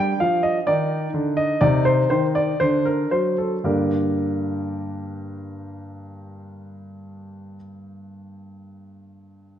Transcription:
0.00 0.11 G3 medium
0.00 0.63 D4 soft
0.00 0.18 G5 medium
0.20 0.58 F3 soft
0.20 0.43 F5 medium
0.43 0.57 D#5 medium
0.67 1.05 D#3 soft
0.67 1.58 D#4 soft
0.67 1.09 D5 medium
1.14 1.52 D3 soft
1.37 1.61 D#5 medium
1.61 2.01 C3 medium
1.61 2.57 D#4 soft
1.61 1.83 D5 medium
1.85 2.09 C5 medium
2.10 2.51 D#3 soft
2.10 2.25 C5 medium
2.35 2.61 D5 medium
2.60 3.02 D3 soft
2.60 3.62 D4 soft
2.60 2.86 C5 medium
2.85 3.09 A#4 medium
3.11 3.55 F#3 soft
3.11 3.36 C5 medium
3.38 3.54 A4 soft
3.64 7.55 G2 soft
3.64 7.55 D3 soft
3.64 7.56 A#3 soft
3.64 7.56 D4 soft
3.64 7.56 G4 soft
3.64 7.56 A#4 soft

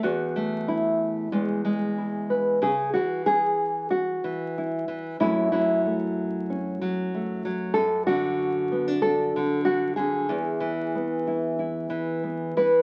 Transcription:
0.03 1.31 E2 medium
0.03 1.33 F#4 medium
0.36 1.29 A3 medium
0.68 1.97 E4 medium
1.32 2.62 E2 medium
1.32 1.63 G#3 soft
1.65 2.59 G#3 medium
1.98 2.59 E4 soft
2.30 2.59 B4 soft
2.62 2.95 C#3 medium
2.62 2.93 G#4 medium
2.94 4.23 E3 medium
2.94 3.26 F#4 medium
3.26 3.90 G#4 loud
3.90 5.20 F#4 medium
4.24 4.87 E3 medium
4.58 5.17 E4 soft
4.88 5.16 E3 medium
5.20 7.72 F#2 medium
5.20 5.52 F#3 medium
5.20 5.85 A3 medium
5.20 6.49 C#4 soft
5.20 5.51 E4 medium
5.52 6.80 F#3 medium
5.52 7.44 E4 medium
5.85 7.13 A3 soft
6.50 7.73 C#4 soft
6.82 7.44 F#3 medium
7.15 7.73 A3 medium
7.45 7.73 F#3 medium
7.74 10.26 F#2 medium
7.74 8.06 A4 loud
8.07 9.35 D3 medium
8.07 9.02 F#4 loud
8.72 8.88 B3 soft
8.88 10.29 D4 soft
9.02 9.65 A4 medium
9.36 9.96 D3 medium
9.65 9.96 F#4 loud
9.96 10.30 D3 medium
9.96 12.55 G#4 medium
10.29 12.82 E2 medium
10.29 11.26 E4 medium
10.60 11.89 E3 medium
10.95 12.22 B3 soft
11.27 11.58 E4 soft
11.59 12.82 E4 soft
11.90 12.56 E3 medium
12.23 12.82 B3 soft
12.57 12.82 E3 medium
12.57 12.82 B4 loud

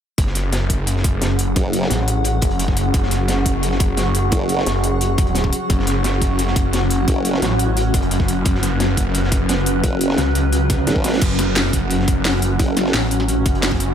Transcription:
0.18 1.55 F#1 medium
0.18 13.94 F#3 medium
0.18 13.94 C#4 medium
0.18 2.94 G#4 medium
0.18 2.93 F#5 medium
0.18 kick loud
0.18 closed hi-hat medium
0.27 snare soft
0.35 snare soft
0.35 closed hi-hat medium
0.52 13.94 F#4 medium
0.52 snare loud
0.52 closed hi-hat medium
0.59 11.51 F#5 medium
0.70 kick medium
0.70 closed hi-hat medium
0.87 closed hi-hat medium
0.96 snare soft
1.04 kick loud
1.04 closed hi-hat medium
1.22 snare loud
1.22 closed hi-hat medium
1.30 6.83 C#6 medium
1.39 closed hi-hat loud
1.39 closed hi-hat medium
1.56 1.89 F#1 medium
1.56 kick loud
1.56 closed hi-hat medium
1.73 closed hi-hat medium
1.82 snare medium
1.90 2.41 A1 medium
1.90 snare loud
1.90 closed hi-hat medium
2.08 closed hi-hat medium
2.24 closed hi-hat medium
2.42 2.93 F#1 medium
2.42 kick loud
2.42 closed hi-hat medium
2.51 closed hi-hat soft
2.59 closed hi-hat medium
2.68 kick medium
2.68 snare soft
2.77 closed hi-hat medium
2.94 4.31 F#1 medium
2.94 5.69 G#4 medium
2.94 kick loud
2.94 closed hi-hat medium
3.03 snare soft
3.11 snare soft
3.11 closed hi-hat medium
3.28 snare loud
3.28 closed hi-hat medium
3.46 kick medium
3.46 closed hi-hat medium
3.63 closed hi-hat medium
3.71 snare soft
3.80 kick loud
3.80 closed hi-hat medium
3.97 snare loud
3.97 closed hi-hat medium
4.15 closed hi-hat medium
4.32 4.65 F#1 medium
4.32 kick loud
4.32 closed hi-hat medium
4.49 closed hi-hat medium
4.58 snare medium
4.66 5.51 F#1 medium
4.66 snare loud
4.66 closed hi-hat medium
4.84 closed hi-hat medium
5.01 closed hi-hat medium
5.18 kick loud
5.18 closed hi-hat medium
5.27 closed hi-hat soft
5.35 snare loud
5.35 closed hi-hat medium
5.44 kick medium
5.52 closed hi-hat medium
5.70 7.06 F#1 medium
5.70 8.45 F#5 medium
5.70 kick loud
5.70 closed hi-hat medium
5.79 snare soft
5.87 snare soft
5.87 closed hi-hat medium
6.04 snare loud
6.04 closed hi-hat medium
6.22 kick medium
6.22 closed hi-hat medium
6.39 closed hi-hat medium
6.47 snare soft
6.56 kick loud
6.56 closed hi-hat medium
6.73 snare loud
6.73 closed hi-hat medium
6.81 12.35 F#6 medium
6.91 closed hi-hat medium
7.08 7.41 F#1 medium
7.08 kick loud
7.08 closed hi-hat medium
7.25 closed hi-hat medium
7.34 snare medium
7.42 7.93 A1 medium
7.42 snare loud
7.42 closed hi-hat medium
7.59 closed hi-hat medium
7.77 closed hi-hat medium
7.94 8.44 F#1 loud
7.94 kick loud
7.94 closed hi-hat medium
8.02 closed hi-hat soft
8.11 closed hi-hat medium
8.20 kick medium
8.20 snare soft
8.28 closed hi-hat medium
8.45 9.82 F#1 loud
8.45 11.21 B4 medium
8.45 kick loud
8.45 closed hi-hat medium
8.55 snare soft
8.63 snare soft
8.63 closed hi-hat medium
8.63 closed hi-hat loud
8.80 snare loud
8.80 closed hi-hat medium
8.97 kick medium
8.97 closed hi-hat medium
9.15 closed hi-hat medium
9.24 snare soft
9.32 kick loud
9.32 closed hi-hat medium
9.49 snare loud
9.49 closed hi-hat medium
9.66 closed hi-hat medium
9.66 closed hi-hat loud
9.84 10.17 F#1 medium
9.84 kick loud
9.84 closed hi-hat medium
10.01 closed hi-hat loud
10.01 closed hi-hat medium
10.10 snare medium
10.17 10.34 C#2 loud
10.17 snare loud
10.17 closed hi-hat medium
10.35 10.86 C#2 loud
10.35 closed hi-hat medium
10.52 closed hi-hat medium
10.70 kick loud
10.70 snare soft
10.70 closed hi-hat medium
10.87 11.20 G#1 medium
10.87 snare loud
10.87 closed hi-hat medium
10.96 kick medium
11.04 snare medium
11.04 closed hi-hat medium
11.04 closed hi-hat loud
11.08 snare medium
11.08 closed hi-hat medium
11.13 snare medium
11.13 closed hi-hat medium
11.17 snare medium
11.17 closed hi-hat medium
11.21 12.58 F#1 loud
11.21 13.94 F#5 medium
11.21 kick loud
11.21 closed hi-hat medium
11.21 crash medium
11.31 snare soft
11.39 13.94 G#5 medium
11.39 snare soft
11.39 snare medium
11.39 closed hi-hat loud
11.39 closed hi-hat medium
11.56 snare loud
11.56 closed hi-hat medium
11.73 kick medium
11.73 closed hi-hat medium
11.91 closed hi-hat medium
12.00 snare soft
12.08 kick loud
12.08 closed hi-hat medium
12.25 snare loud
12.25 closed hi-hat medium
12.33 13.94 C#6 medium
12.42 closed hi-hat loud
12.42 closed hi-hat medium
12.59 12.93 F#1 loud
12.59 kick loud
12.59 closed hi-hat medium
12.77 snare medium
12.77 closed hi-hat medium
12.85 snare medium
12.94 13.44 A1 medium
12.94 snare loud
12.94 closed hi-hat medium
13.11 closed hi-hat medium
13.20 snare soft
13.28 closed hi-hat medium
13.46 13.94 F#1 loud
13.46 kick loud
13.46 closed hi-hat medium
13.55 closed hi-hat soft
13.63 snare loud
13.63 closed hi-hat medium
13.72 kick medium
13.72 snare soft
13.80 closed hi-hat medium
13.80 closed hi-hat loud

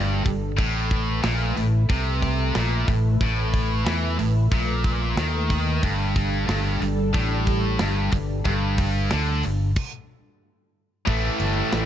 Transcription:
0.00 0.23 G1 medium
0.00 0.23 G2 medium
0.00 0.54 G3 medium
0.00 0.54 D4 medium
0.00 0.54 A4 medium
0.24 0.56 G1 medium
0.24 0.51 G2 medium
0.24 kick medium
0.24 open hi-hat medium
0.57 1.20 A1 medium
0.57 1.22 A2 loud
0.57 5.79 A3 medium
0.57 5.79 B4 medium
0.57 5.79 E5 medium
0.57 kick loud
0.57 crash medium
0.91 kick medium
0.91 open hi-hat medium
1.23 1.54 A#1 medium
1.23 1.55 A#2 loud
1.23 snare loud
1.23 open hi-hat medium
1.56 1.87 A1 medium
1.56 1.83 A2 medium
1.56 open hi-hat medium
1.89 2.51 C2 medium
1.89 2.54 C3 loud
1.89 kick loud
1.89 open hi-hat medium
2.22 kick medium
2.22 open hi-hat medium
2.55 2.86 A#1 medium
2.55 2.87 A#2 medium
2.55 snare loud
2.55 open hi-hat medium
2.88 3.19 A1 medium
2.88 3.14 A2 medium
2.88 kick medium
2.88 open hi-hat medium
3.21 3.82 A1 medium
3.21 3.85 A2 loud
3.21 kick loud
3.21 open hi-hat medium
3.54 kick medium
3.54 open hi-hat medium
3.86 4.17 E2 medium
3.86 4.18 E3 medium
3.86 snare loud
3.86 open hi-hat medium
4.19 4.50 A1 medium
4.19 4.45 A2 medium
4.19 open hi-hat medium
4.52 5.14 A#1 medium
4.52 5.17 A#2 medium
4.52 kick loud
4.52 open hi-hat medium
4.84 kick medium
4.84 open hi-hat medium
5.16 5.79 D#2 loud
5.16 5.82 D#3 medium
5.16 snare loud
5.16 open hi-hat medium
5.50 kick medium
5.50 open hi-hat medium
5.82 6.45 G1 medium
5.82 6.46 G2 loud
5.82 9.72 G3 medium
5.82 9.72 D4 medium
5.82 9.72 A4 medium
5.82 kick loud
5.82 open hi-hat medium
6.16 kick medium
6.16 open hi-hat medium
6.47 6.79 G1 medium
6.47 6.80 G2 loud
6.47 snare loud
6.47 open hi-hat medium
6.80 7.12 G1 medium
6.80 7.08 G2 medium
6.80 open hi-hat medium
7.13 7.76 A1 medium
7.13 7.79 A2 loud
7.13 kick loud
7.13 open hi-hat medium
7.47 kick medium
7.47 open hi-hat medium
7.79 8.11 G1 medium
7.79 8.11 G2 loud
7.79 snare loud
7.79 open hi-hat medium
8.12 8.43 G1 medium
8.12 8.39 G2 medium
8.12 kick medium
8.12 open hi-hat medium
8.45 9.07 G1 medium
8.45 9.10 G2 loud
8.45 kick loud
8.45 open hi-hat medium
8.78 kick medium
8.78 open hi-hat medium
9.11 9.42 D2 medium
9.11 9.43 D3 loud
9.11 snare loud
9.11 open hi-hat medium
9.43 9.75 G1 medium
9.43 9.70 G2 medium
9.43 open hi-hat medium
9.76 kick loud
9.76 crash loud
11.05 11.28 A1 medium
11.05 11.86 A2 medium
11.05 11.86 E3 medium
11.05 11.86 A3 medium
11.05 11.86 E4 medium
11.05 11.86 B4 medium
11.05 kick medium
11.05 crash loud
11.40 11.60 G1 medium
11.40 ride medium
11.72 11.86 A1 medium
11.72 snare loud
11.72 ride medium

